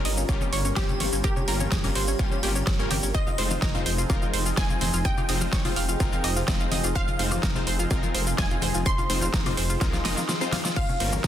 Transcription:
Already playing: G3 C#4 F4 A#4
0.05 G1 D#5, open hi-hat
0.17 C#4, cabasa
0.28 G1 G3 A#3 C#4 F4 G4, kick, cabasa, high woodblock
0.41 C#4, high conga, cabasa
0.53 G1 C#5, open hi-hat
0.65 C#4, cabasa
0.76 G1 G3 A#3 C#4 F4 G4 C5, kick, snare, cabasa, high woodblock
0.89 C#4, low conga, cabasa
1.00 G1 C#5, open hi-hat, high conga
1.13 G1 C#4, cabasa
1.24 G1 G4 A#4, kick, cabasa
1.36 C#4, low conga, cabasa, high woodblock
1.48 G1 G3 A#3 C#4 F4 A#4, open hi-hat
1.60 C#4, high conga, cabasa
1.72 G1 G#4, kick, snare, cabasa
1.84 G3 A#3 C#4 F4 A#4, open hi-hat, low conga, cabasa, high woodblock
1.95 G1 C5, open hi-hat
2.08 C#4, cabasa
2.19 G1 G3 A#3 C#4 F4 G4, kick, cabasa
2.31 C#4, high conga, cabasa
2.43 G1 G3 A#3 C#4 F4 G4, open hi-hat, high woodblock
2.56 C#4, cabasa
2.67 G1 C#4, kick, snare, cabasa
2.79 G3 A#3 C#4 F4 A#4, cabasa
2.91 G1 G4, open hi-hat, high conga, high woodblock
3.03 G1 C#4, cabasa
3.14 F1 F3 C4 D#4 G#4 C5 D#5, kick, cabasa
3.27 F4, low conga, cabasa
3.38 F1 G#3 C4 D#4 F4 C5, open hi-hat
3.51 F4, high conga, cabasa
3.62 F1 A#4, kick, snare, cabasa, high woodblock
3.75 G#3 C4 D#4 F4 C5, low conga, cabasa
3.86 F1 C5, open hi-hat
3.98 F4, cabasa
4.10 F1 G#3 C4 D#4 F4 A#4, kick, cabasa, high woodblock
4.22 F4, high conga, cabasa
4.34 F1 C5, open hi-hat
4.46 F4, cabasa
4.57 F1 G#3 C4 D#4 F4 D#5 G#5, kick, snare, cabasa
4.69 F4, low conga, cabasa, high woodblock
4.81 F1 C5, open hi-hat, high conga
4.94 F1 F4, cabasa
5.05 F1 D#5 G5, kick, cabasa
5.17 F4, low conga, cabasa, high woodblock
5.29 F1 G#3 C4 D#4 F4 C5 D#5, open hi-hat
5.41 F4, high conga, cabasa
5.53 F1 C#5, kick, snare, cabasa
5.65 G#3 C4 D#4 F4 C5, open hi-hat, low conga, cabasa
5.76 F1 F5, open hi-hat, high woodblock
5.89 F4, cabasa
6.00 F1 G#3 C4 D#4 F4 A#4, kick, cabasa
6.13 F4, high conga, cabasa
6.24 F1 D#5, open hi-hat, high woodblock
6.36 F4, cabasa
6.48 F1 G#3 C4 D#4 F4 D#5, kick, snare, cabasa
6.60 F4, cabasa
6.72 F1 D#5, open hi-hat, high conga
6.84 F1 F4, cabasa, high woodblock
6.95 F1 C5 F5, kick, cabasa
7.08 F4, low conga, cabasa
7.19 F1 G#3 C4 D#4 F4 C5, open hi-hat
7.31 F4, high conga, cabasa, high woodblock
7.43 F1 A#4, kick, snare, cabasa
7.55 G#3 C4 D#4 F4 C5, low conga, cabasa
7.67 F1 C5, open hi-hat
7.79 F4, cabasa
7.91 F1 G#3 C4 D#4 F4 A#4, kick, cabasa, high woodblock
8.03 F4, high conga, cabasa
8.15 F1 C5, open hi-hat
8.27 F4, cabasa
8.38 F1 G#3 C4 D#4 F4 D#5 G#5, kick, snare, cabasa, high woodblock
8.51 F4, low conga, cabasa
8.62 F1 C5, open hi-hat, high conga
8.75 F1 F4, cabasa
8.86 F1 C5 C6, kick, cabasa
8.98 F4, low conga, cabasa, high woodblock
9.10 F1 G#3 C4 D#4 F4 C5, open hi-hat
9.21 F4, high conga, cabasa
9.34 F1 A#4, kick, snare, cabasa
9.46 G#3 C4 D#4 F4 C5, open hi-hat, low conga, cabasa, high woodblock
9.57 F1 C5, open hi-hat
9.70 F4, cabasa
9.81 C2 G#3 C4 D#4 F4 A#4, kick, snare, cabasa
9.93 F4, snare, high conga, cabasa
10.05 F1 G#3 C4 D#4 F4 A#4 D#5, snare, open hi-hat, high woodblock
10.17 F4, snare, cabasa
10.29 F4, snare, cabasa
10.41 G#3 C4 D#4 F4 C5, cabasa
10.52 F5, snare, open hi-hat, high conga, high woodblock
10.65 F4, snare, cabasa
10.76 G1 G3 C#4 F4 A#4 C5 F5, kick, crash, cabasa
10.89 C#4, low conga, cabasa
11.00 G1 G3 A#3 C#4 F4 A#4 C5, open hi-hat, ride
11.12 C#4, high conga, cabasa
11.24 G1 A#4, kick

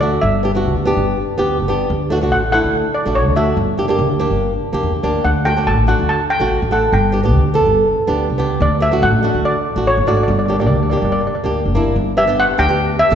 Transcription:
Already playing: D2
0.01 A3 D4 F#4 D5
0.21 G1 E5
0.43 B3 D4 G4
0.55 B3 D4 F#4
0.65 D2
0.85 B3 D4 G4
0.97 G1
1.38 D2 B3 D4 G4
1.60 G1
1.68 B3 D4 G4
1.90 D2
2.10 A3 D4 F#4
2.21 A3 D4 F#4
2.32 A1 F#5
2.52 A3 D4 E4 F#5
2.64 D2
2.95 D5
3.06 A1 A3 D4 F#4
3.15 C#5
3.27 D2
3.36 A3 D4 F#4 E5
3.57 G1
3.78 A#3 D4 G4
3.88 A#3 D4 G4
3.99 D2
4.19 A#3 D4 G4
4.31 G1
4.73 D2 A#3 D4 G4
4.83 E2
5.03 D2 A#3 D4 G4
5.24 D2 F#5
5.45 A3 D4 F#4 G5
5.57 A3 D4 F#4
5.67 A1 A5
5.87 A3 D4 F#4 F#5
5.99 D2
6.09 A5
6.30 G5
6.40 A1 A3 D4 F#4
6.62 A1
6.71 A3 D4 A4 F#5
6.92 G1 G5
7.12 B3 D4 G4
7.23 B3 D4 G4
7.34 D2
7.54 B3 D4 A4
7.66 G1
8.07 D2 B3 D4 G4
8.30 C#2
8.38 B3 D4 G4
8.60 D2 D5
8.80 A3 D4 F#4 E5
8.91 A3 D4 F#4
9.02 A1 F#5
9.23 A3 D4 F#4
9.34 D2
9.45 D5
9.76 A1 A3 D4 F#4
9.87 C#5
9.97 G#1
10.07 A3 D4 F#4 D5
10.17 D5
10.23 D5
10.28 G1 D5
10.39 D5
10.46 A#3 D4 D5
10.50 G4 D5
10.59 A#3 D4 G4 D5
10.67 D2 D5
10.75 D5
10.83 D5
10.90 A#3 D4 G4 D5
10.97 D5
11.02 G1 D5
11.12 D5
11.21 D5
11.27 D5
11.35 D5
11.44 D2 A#3 D4 G4
11.65 G1
11.75 A#3 D4 E4
11.96 G1
12.17 B3 D4 G4 E5
12.27 B3 D4 G4
12.40 F#5
12.58 D2 B3 D4 G4 G5
12.69 B3 D4 G4
12.99 E5
13.10 D2 B3 D4

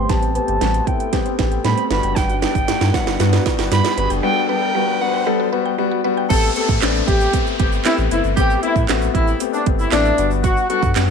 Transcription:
Already playing: A3 G4 C5 C6, riser
0.09 A1 G3 B3 C4 G4 A4 A5, kick, snare, closed hi-hat
0.22 C4, closed hi-hat
0.35 B3 C4 G4 B4 A5, closed hi-hat
0.48 G1 G5, closed hi-hat
0.61 A1 G3 B3 C4 F#4, snare, closed hi-hat
0.74 closed hi-hat
0.87 B3 C4 E4 G5, kick, closed hi-hat
1.00 G5, closed hi-hat
1.13 G3 B3 C4 G4, kick, snare, closed hi-hat
1.26 C4, closed hi-hat
1.39 A1 B3 C4 G4 B4, kick, snare, closed hi-hat
1.52 G5, closed hi-hat
1.64 A2 G3 B3 C4 G4 B5, snare, closed hi-hat
1.78 C4, closed hi-hat
1.90 G1 G3 B3 D4 F#4 B4 B5, snare, closed hi-hat
2.03 F#1 G5, closed hi-hat
2.16 G1 G3 G5, kick, snare, closed hi-hat, shaker
2.29 F#4, closed hi-hat, shaker
2.42 G3 B3 D4 B4 G5, snare, closed hi-hat, shaker
2.55 G1 G5, kick, closed hi-hat, shaker
2.68 G2 G3 B3 F#4, snare, closed hi-hat, shaker
2.81 G2, snare, closed hi-hat, shaker
2.94 G3 B3 F#4 F#5, kick, snare, closed hi-hat, shaker
3.07 G1 G5, snare, closed hi-hat, shaker
3.20 G2 G3 B3 F#4, snare, closed hi-hat, shaker
3.33 F#4, snare, closed hi-hat, shaker
3.45 G3 B3 F#4 B4, kick, snare, closed hi-hat, shaker
3.59 G1 G5, snare, closed hi-hat, shaker
3.71 G2 G3 B3 F#4 B5, snare, closed hi-hat, shaker
3.84 F#4, snare, closed hi-hat, shaker
3.97 G1 G3 B3 F#4 B4 B5, closed hi-hat
4.10 F#1 G5, closed hi-hat, shaker
4.23 G3 B3 F#4 G5
4.36 F#4
4.49 G3 B3 D4 B4 G5
4.62 G5
4.75 G3 B3 F#4
5.01 G3 B3 F#4 F#5
5.14 G5
5.26 G3 B3 A4
5.40 F#4
5.52 G3 B3 F#4 B4
5.65 G5
5.78 G3 B3 F#4
5.91 F#4
6.04 G3 B3 F#4 B4
6.17 G5
6.30 A1 A3 B3 C4 G4 A4, kick, closed hi-hat, crash, downlifter, shaker
6.43 shaker
6.56 A3 B3 C4 G4 A4, closed hi-hat
6.69 A2, kick, shaker
6.82 A1 A3 B3 C4 D4, snare, clap, closed hi-hat, shaker
6.95 shaker
7.08 A1 A3 B3 C4 G4, kick, closed hi-hat
7.21 shaker
7.33 A3 B3 C4 G4, kick, closed hi-hat, shaker
7.47 shaker
7.59 G1 A3 B3 C4 G4, kick, closed hi-hat
7.72 shaker
7.85 A3 B3 C4 E4 G4, snare, clap, closed hi-hat, shaker
7.98 A1, shaker
8.11 F#1 A3 B3 C4 E4, closed hi-hat, shaker
8.24 G1, shaker
8.37 A1 A3 B3 C4 G4, kick, closed hi-hat, shaker
8.50 shaker
8.63 A3 B3 C4 E4 G4, closed hi-hat
8.76 A2, kick, shaker
8.88 A1 A3 B3 C4 F#4, snare, clap, closed hi-hat, shaker
9.02 shaker
9.14 A1 A3 B3 C4 E4 G4, kick, closed hi-hat
9.27 shaker
9.40 A3 B3 C4 G4, closed hi-hat, shaker
9.53 D4, shaker
9.66 G1 A3 B3 C4 G4, kick, closed hi-hat
9.79 E4, shaker
9.92 A1 A3 B3 C4 D4 E4, snare, clap, closed hi-hat, shaker
10.05 shaker
10.18 G1 G3 B3 D4 F#4, closed hi-hat, shaker
10.31 shaker
10.44 F#4, kick, closed hi-hat, shaker
10.57 shaker
10.70 G3 B3 D4 F#4 A4, closed hi-hat
10.83 G2, kick, shaker
10.95 F#2 G3 B3 D4 F#4, snare, clap, closed hi-hat, shaker

